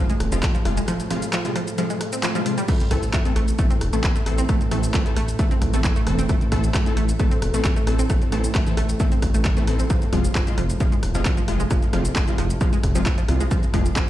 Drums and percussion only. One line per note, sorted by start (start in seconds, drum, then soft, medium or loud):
0.10 closed hi-hat medium
0.10 shaker soft
0.20 cross-stick medium
0.20 open hi-hat loud
0.32 closed hi-hat medium
0.32 shaker medium
0.43 kick loud
0.43 cross-stick medium
0.43 clap loud
0.43 closed hi-hat medium
0.43 shaker medium
0.55 closed hi-hat medium
0.55 shaker soft
0.65 cross-stick medium
0.65 open hi-hat loud
0.77 closed hi-hat soft
0.77 shaker medium
0.88 cross-stick medium
0.88 closed hi-hat medium
0.88 shaker medium
1.00 closed hi-hat medium
1.00 shaker soft
1.10 cross-stick medium
1.10 open hi-hat loud
1.22 closed hi-hat medium
1.22 shaker medium
1.33 cross-stick medium
1.33 clap loud
1.33 closed hi-hat medium
1.33 shaker medium
1.45 closed hi-hat medium
1.45 shaker soft
1.56 cross-stick medium
1.56 open hi-hat loud
1.67 closed hi-hat medium
1.67 shaker medium
1.78 cross-stick medium
1.78 closed hi-hat loud
1.78 shaker soft
1.90 closed hi-hat medium
1.90 shaker soft
2.01 cross-stick medium
2.01 open hi-hat loud
2.13 closed hi-hat medium
2.13 shaker medium
2.23 cross-stick medium
2.23 clap loud
2.23 closed hi-hat loud
2.23 shaker medium
2.35 closed hi-hat medium
2.35 shaker soft
2.46 cross-stick medium
2.46 open hi-hat loud
2.58 closed hi-hat soft
2.58 shaker medium
2.68 kick loud
2.68 cross-stick medium
2.68 closed hi-hat loud
2.68 crash medium
2.68 shaker medium
2.80 closed hi-hat medium
2.80 shaker soft
2.91 kick medium
2.91 cross-stick medium
2.91 open hi-hat loud
3.03 closed hi-hat medium
3.03 shaker medium
3.13 kick loud
3.13 cross-stick medium
3.13 clap loud
3.13 closed hi-hat loud
3.13 shaker medium
3.25 closed hi-hat medium
3.25 shaker soft
3.36 cross-stick medium
3.36 open hi-hat loud
3.48 closed hi-hat medium
3.48 shaker medium
3.59 kick loud
3.59 cross-stick medium
3.59 closed hi-hat loud
3.59 shaker soft
3.70 closed hi-hat medium
3.70 shaker soft
3.81 cross-stick medium
3.81 open hi-hat loud
3.93 closed hi-hat medium
3.93 shaker medium
4.04 kick loud
4.04 cross-stick medium
4.04 clap loud
4.04 closed hi-hat loud
4.04 shaker medium
4.16 closed hi-hat medium
4.16 shaker soft
4.26 cross-stick medium
4.26 open hi-hat loud
4.38 closed hi-hat medium
4.38 shaker medium
4.49 kick loud
4.49 cross-stick medium
4.49 closed hi-hat medium
4.49 shaker medium
4.61 closed hi-hat medium
4.61 shaker soft
4.71 cross-stick medium
4.71 open hi-hat loud
4.83 closed hi-hat medium
4.83 shaker medium
4.94 kick loud
4.94 cross-stick medium
4.94 clap loud
4.94 closed hi-hat medium
4.94 shaker medium
5.06 closed hi-hat medium
5.06 shaker soft
5.17 cross-stick medium
5.17 open hi-hat loud
5.28 closed hi-hat medium
5.28 shaker medium
5.39 kick loud
5.39 cross-stick medium
5.39 closed hi-hat loud
5.39 shaker medium
5.51 closed hi-hat medium
5.51 shaker soft
5.62 kick medium
5.62 cross-stick medium
5.62 open hi-hat loud
5.74 closed hi-hat medium
5.74 shaker medium
5.84 kick loud
5.84 cross-stick medium
5.84 clap loud
5.84 closed hi-hat loud
5.84 shaker medium
5.96 closed hi-hat medium
5.96 shaker soft
6.07 cross-stick loud
6.07 open hi-hat loud
6.19 closed hi-hat medium
6.19 shaker medium
6.29 kick loud
6.29 cross-stick medium
6.29 closed hi-hat loud
6.29 shaker medium
6.41 closed hi-hat medium
6.41 shaker soft
6.52 kick medium
6.52 cross-stick medium
6.52 open hi-hat loud
6.64 closed hi-hat medium
6.64 shaker medium
6.74 kick loud
6.74 cross-stick loud
6.74 clap loud
6.74 closed hi-hat medium
6.74 shaker medium
6.86 closed hi-hat medium
6.86 shaker soft
6.97 cross-stick medium
6.97 open hi-hat loud
7.09 closed hi-hat medium
7.09 shaker medium
7.19 kick loud
7.19 cross-stick medium
7.19 closed hi-hat medium
7.19 shaker medium
7.31 closed hi-hat medium
7.31 shaker soft
7.42 cross-stick loud
7.42 open hi-hat loud
7.54 closed hi-hat medium
7.54 shaker medium
7.65 kick loud
7.65 cross-stick medium
7.65 clap loud
7.65 closed hi-hat medium
7.65 shaker medium
7.76 closed hi-hat medium
7.76 shaker soft
7.87 cross-stick loud
7.87 open hi-hat loud
7.99 closed hi-hat medium
7.99 shaker medium
8.10 kick loud
8.10 cross-stick loud
8.10 closed hi-hat loud
8.10 shaker medium
8.22 closed hi-hat medium
8.22 shaker soft
8.32 cross-stick medium
8.32 open hi-hat loud
8.44 closed hi-hat medium
8.44 shaker medium
8.55 kick loud
8.55 cross-stick medium
8.55 clap loud
8.55 closed hi-hat medium
8.55 shaker medium
8.67 closed hi-hat medium
8.67 shaker soft
8.77 cross-stick loud
8.77 open hi-hat loud
8.89 closed hi-hat medium
8.89 shaker medium
9.00 kick loud
9.00 cross-stick medium
9.00 closed hi-hat medium
9.00 shaker medium
9.12 closed hi-hat medium
9.12 shaker soft
9.22 kick medium
9.22 cross-stick loud
9.22 open hi-hat loud
9.34 closed hi-hat medium
9.34 shaker medium
9.45 kick loud
9.45 cross-stick loud
9.45 clap loud
9.45 closed hi-hat medium
9.45 shaker medium
9.57 closed hi-hat medium
9.57 shaker soft
9.67 cross-stick medium
9.67 open hi-hat loud
9.79 closed hi-hat soft
9.79 shaker medium
9.90 kick loud
9.90 cross-stick loud
9.90 closed hi-hat medium
9.90 shaker medium
10.02 closed hi-hat medium
10.02 shaker soft
10.13 kick medium
10.13 cross-stick medium
10.13 open hi-hat loud
10.24 closed hi-hat medium
10.24 shaker medium
10.35 kick loud
10.35 cross-stick loud
10.35 clap loud
10.35 closed hi-hat medium
10.35 shaker medium
10.47 closed hi-hat medium
10.47 shaker soft
10.58 cross-stick loud
10.58 open hi-hat loud
10.70 closed hi-hat medium
10.70 shaker medium
10.80 kick loud
10.80 cross-stick medium
10.80 closed hi-hat medium
10.80 shaker medium
10.92 closed hi-hat medium
10.92 shaker soft
11.03 cross-stick medium
11.03 open hi-hat loud
11.15 closed hi-hat soft
11.15 shaker medium
11.25 kick loud
11.25 cross-stick loud
11.25 clap loud
11.25 closed hi-hat medium
11.25 shaker medium
11.37 closed hi-hat medium
11.37 shaker soft
11.48 cross-stick medium
11.48 open hi-hat loud
11.60 closed hi-hat soft
11.60 shaker medium
11.71 kick loud
11.71 cross-stick medium
11.71 closed hi-hat medium
11.71 shaker medium
11.82 closed hi-hat medium
11.82 shaker soft
11.93 cross-stick medium
11.93 open hi-hat loud
12.05 closed hi-hat medium
12.05 shaker medium
12.16 kick loud
12.16 cross-stick medium
12.16 clap loud
12.16 closed hi-hat medium
12.16 shaker medium
12.28 closed hi-hat soft
12.28 shaker soft
12.38 cross-stick medium
12.38 open hi-hat loud
12.50 closed hi-hat medium
12.50 shaker medium
12.61 kick loud
12.61 cross-stick medium
12.61 closed hi-hat medium
12.61 shaker medium
12.73 closed hi-hat medium
12.73 shaker soft
12.83 kick medium
12.83 cross-stick medium
12.83 open hi-hat loud
12.95 closed hi-hat medium
12.95 shaker medium
13.06 kick loud
13.06 cross-stick medium
13.06 clap loud
13.06 closed hi-hat medium
13.06 shaker medium
13.18 closed hi-hat medium
13.18 shaker soft
13.29 cross-stick medium
13.29 open hi-hat loud
13.40 closed hi-hat soft
13.40 shaker medium
13.51 kick loud
13.51 cross-stick medium
13.51 closed hi-hat medium
13.51 shaker medium
13.63 closed hi-hat medium
13.63 shaker soft
13.74 kick medium
13.74 cross-stick medium
13.74 open hi-hat medium
13.86 closed hi-hat medium
13.86 shaker medium
13.96 kick loud
13.96 cross-stick medium
13.96 clap loud
13.96 closed hi-hat medium
13.96 shaker medium